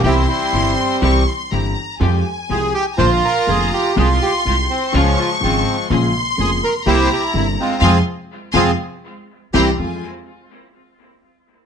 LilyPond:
<<
  \new Staff \with { instrumentName = "Violin section" } { \time 4/4 \key f \minor \tempo 4 = 123 c'''2 des'''8 c'''8 bes''4 | aes''2 bes''2 | c'''2 des'''2 | c'''2 bes''2 |
<f'' aes'' c'''>8 r4 <f'' aes'' c'''>8 r4. <g'' bes'' c'''>8 | aes''8 r2. r8 | }
  \new Staff \with { instrumentName = "Bandoneon" } { \time 4/4 \key f \minor << { g'8 e'4 r2 r8 | r4 aes'8 g'8 c''8 bes'8 aes'8 g'8 | aes'8 g'8 f'8 c'8 des'8 f'8 c'8. r16 | r4 aes'8 bes'8 c''8 g'8 e'8 f'8 |
<c' f' aes'>8 r4 <c' f' aes'>8 r4. <c' e' g'>8 | r1 | } \\ { <c' e'>8 <g c'>2 r4. | r2 f'2 | f'2 <f aes>4 <f aes>4 | r2 <e' g'>4. <aes c'>8 |
r1 | r1 | } >> }
  \new Staff \with { instrumentName = "String section" } { \time 4/4 \key f \minor <c' e' g'>8 r8 <c' e' g'>8 r8 <c' e' g'>8 r8 <c' e' g'>8 r8 | <aes f' g'>8 r8 <aes f' g'>8 r8 <bes d' f'>8 r8 <bes d' f'>8 r8 | <aes f' g'>8 r8 <aes f' g'>8 r8 <aes des' f'>8 r8 <aes des' f'>8 r8 | <bes des' aes'>8 r8 <bes des' aes'>8 r8 <bes c' e'>8 r8 <bes c' e'>8 r8 |
<aes c' f'>8 r4 <aes c' f'>8 r4. <bes c' e'>8 | <aes c' f'>8 r2. r8 | }
  \new Staff \with { instrumentName = "Grand piano" } { \clef bass \time 4/4 \key f \minor <c, c e g c' g'>8 r8 <g,, g, e g c' g'>8 r8 <c, c e g c' g'>8 r8 <g,, g, e g c' g'>8 r8 | <f, f aes c' g'>8 r8 <c, c f aes c' g'>8 r8 <bes,, bes, d f bes f'>8 r8 <f,, f, d f bes f'>8 r8 | <c, c g aes f'>8 r8 <c, c g aes f'>8 r8 <des, des f aes f'>8 r8 <aes,, aes, des f aes f'>8 r8 | <bes,, bes, des aes bes f'>8 r8 <f,, f, des aes bes f'>8 r8 <c, c g bes e'>8 r8 <g,, g, c g bes e'>8 r8 |
<c f aes>8 r4 <c f aes>8 r4. <c e g>8 | <f, aes c' f'>8 r2. r8 | }
  \new Staff \with { instrumentName = "Upright bass" } { \clef bass \time 4/4 \key f \minor c,8 r8 g,,8 r8 c,8 r8 g,,8 r8 | f,8 r8 c,8 r8 bes,,8 r8 f,,8 r8 | c,8 r8 c,8 r8 des,8 r8 aes,,8 r8 | bes,,8 r8 f,,8 r8 c,8 r8 g,,8 r8 |
f,8 r4 f,8 r4. c,8 | f,8 r2. r8 | }
>>